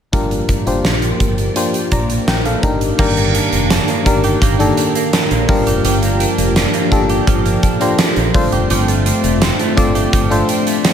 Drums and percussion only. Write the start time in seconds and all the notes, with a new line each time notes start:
0.13 kick, closed hi-hat
0.31 closed hi-hat
0.49 kick, closed hi-hat
0.67 closed hi-hat
0.85 snare
1.02 closed hi-hat
1.20 kick, closed hi-hat
1.38 closed hi-hat
1.56 closed hi-hat
1.74 closed hi-hat
1.92 kick, closed hi-hat
2.10 closed hi-hat
2.28 snare
2.45 closed hi-hat
2.63 kick, closed hi-hat
2.81 closed hi-hat
2.99 kick, crash
3.17 closed hi-hat
3.35 closed hi-hat
3.53 closed hi-hat
3.70 snare, closed hi-hat
3.88 closed hi-hat
4.06 kick, closed hi-hat
4.24 closed hi-hat
4.42 kick, closed hi-hat
4.60 closed hi-hat
4.77 closed hi-hat
4.95 closed hi-hat
5.13 snare, closed hi-hat
5.31 closed hi-hat
5.49 kick, open hi-hat
5.67 closed hi-hat
5.85 closed hi-hat
6.03 closed hi-hat
6.20 closed hi-hat
6.38 closed hi-hat
6.56 snare, closed hi-hat
6.74 closed hi-hat
6.92 kick, closed hi-hat
7.09 closed hi-hat
7.27 kick, closed hi-hat
7.46 closed hi-hat
7.63 kick, closed hi-hat
7.81 closed hi-hat
7.99 snare, closed hi-hat
8.16 closed hi-hat
8.34 kick, open hi-hat
8.52 closed hi-hat
8.70 closed hi-hat
8.88 closed hi-hat
9.06 closed hi-hat
9.24 closed hi-hat
9.42 snare, closed hi-hat
9.59 closed hi-hat
9.77 kick, closed hi-hat
9.95 closed hi-hat
10.13 kick, closed hi-hat
10.31 closed hi-hat
10.49 closed hi-hat
10.67 closed hi-hat
10.85 snare, closed hi-hat